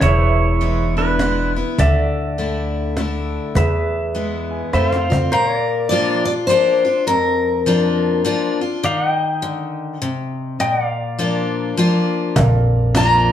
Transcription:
0.01 1.61 E1 medium
0.01 1.15 E2 loud
0.01 0.94 E4 medium
0.01 1.75 G#4 medium
0.01 1.75 B4 medium
0.01 0.26 C#5 medium
0.01 0.97 C#5 medium
0.01 1.77 E5 medium
0.01 1.75 E5 medium
0.01 cajon bass loud
0.26 1.76 B4 medium
0.61 0.95 E3 medium
0.61 0.96 G#3 medium
0.61 0.96 B3 soft
0.61 0.95 E4 medium
0.61 cajon slap soft
0.97 1.19 B3 soft
0.97 1.52 D4 medium
0.97 1.18 E4 medium
0.97 1.52 B4 medium
1.19 1.54 E3 medium
1.19 1.54 G#3 medium
1.19 1.55 B3 medium
1.19 1.55 E4 medium
1.19 cajon slap medium
1.56 1.78 B3 soft
1.56 1.78 E4 medium
1.78 3.37 D2 medium
1.78 2.37 D3 medium
1.78 3.52 A4 medium
1.78 3.52 D5 medium
1.78 3.54 D5 medium
1.78 3.52 E5 medium
1.78 3.54 E5 medium
1.78 cajon bass loud
2.38 2.94 D3 soft
2.38 2.95 A3 medium
2.38 2.95 D4 medium
2.38 2.95 E4 medium
2.38 cajon slap soft
2.97 3.53 D3 medium
2.97 3.53 A3 medium
2.97 3.54 D4 medium
2.97 3.54 E4 medium
2.97 cajon slap medium
3.55 4.61 E2 medium
3.55 4.69 E2 medium
3.55 4.71 G#4 medium
3.55 4.71 B4 medium
3.55 4.72 B4 medium
3.55 4.71 E5 medium
3.55 4.73 E5 medium
3.55 cajon bass medium
4.15 4.71 E3 medium
4.15 4.71 G#3 medium
4.15 4.71 B3 medium
4.15 4.72 E4 medium
4.15 cajon slap soft
4.51 4.72 G#5 medium
4.73 5.26 F2 medium
4.73 5.08 D#3 medium
4.73 5.08 A3 medium
4.73 5.08 C4 medium
4.73 5.09 F4 medium
4.73 5.32 A4 medium
4.73 4.89 B4 medium
4.73 5.32 C5 medium
4.73 4.90 E5 medium
4.73 5.06 F5 medium
4.73 cajon slap medium
4.89 5.31 C5 medium
4.89 5.32 F5 medium
4.89 cajon slap medium
5.09 5.32 C4 soft
5.09 5.31 F4 medium
5.09 5.30 D5 medium
5.09 cajon bass medium
5.32 6.45 A#2 loud
5.32 5.89 A#4 medium
5.32 5.57 C5 medium
5.32 8.81 F5 medium
5.57 8.81 D5 medium
5.89 6.25 F3 medium
5.89 6.25 A#3 medium
5.89 6.26 D4 medium
5.89 6.26 F4 loud
5.89 6.24 D5 loud
6.25 6.49 D4 medium
6.25 6.48 F4 medium
6.25 6.32 D5 loud
6.47 6.84 F3 medium
6.47 6.84 A#3 medium
6.47 6.84 D4 loud
6.47 7.06 C5 loud
6.51 6.84 F4 loud
6.85 7.08 D4 soft
6.85 7.07 F4 medium
7.07 8.21 F2 loud
7.07 8.21 A#4 medium
7.66 8.23 F3 medium
7.66 8.23 A#3 medium
7.66 8.24 D4 loud
7.66 8.24 F4 medium
8.25 8.59 F3 medium
8.25 8.60 A#3 medium
8.25 8.60 D4 loud
8.25 8.60 F4 medium
8.61 8.84 D4 soft
8.61 8.83 F4 medium
8.83 9.97 D#3 loud
8.83 9.04 D5 medium
8.83 9.10 F5 medium
9.04 10.58 D#5 medium
9.10 10.59 G5 medium
9.42 9.99 D3 medium
10.02 10.58 C3 medium
10.60 11.73 A#2 loud
10.60 10.80 D#5 medium
10.60 10.86 G5 medium
10.80 13.32 D5 medium
10.86 13.32 F5 medium
11.19 11.75 F3 medium
11.19 11.75 A#3 medium
11.19 11.76 D4 medium
11.19 11.76 F4 medium
11.77 12.34 F3 loud
11.77 12.34 A#3 medium
11.77 12.34 D4 medium
11.77 12.35 F4 loud
12.36 13.32 A#1 loud
12.36 13.32 F2 loud
12.36 13.32 A#4 medium
12.36 13.32 D5 medium
12.36 13.32 F5 medium
12.36 cajon bass loud
12.95 13.32 F3 medium
12.95 13.32 A#3 medium
12.95 13.32 D4 medium
12.95 13.32 F4 medium
12.95 13.32 A#5 loud
12.95 cajon slap loud

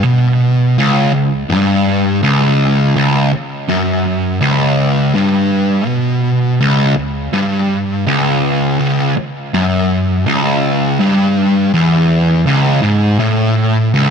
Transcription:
0.04 0.76 B2 loud
0.78 1.12 C#2 loud
1.13 1.42 C#2 medium
1.50 2.21 G2 loud
2.23 2.94 C#2 loud
2.96 3.31 C#2 loud
3.33 muted distorted electric guitar stroke medium
3.69 4.40 F#2 loud
4.41 5.13 C#2 loud
5.15 5.86 G2 loud
5.86 6.58 B2 loud
6.61 6.96 C#2 loud
6.97 7.26 C#2 medium
7.33 8.05 G2 loud
8.07 8.78 C#2 medium
8.80 9.15 C#2 loud
9.17 muted distorted electric guitar stroke medium
9.54 10.26 F#2 loud
10.26 10.98 C#2 loud
11.00 11.72 G2 loud
11.74 12.45 E2 loud
12.47 12.82 C#2 loud
12.83 13.18 G#2 loud
13.20 13.92 A2 loud
13.94 14.10 C#2 loud

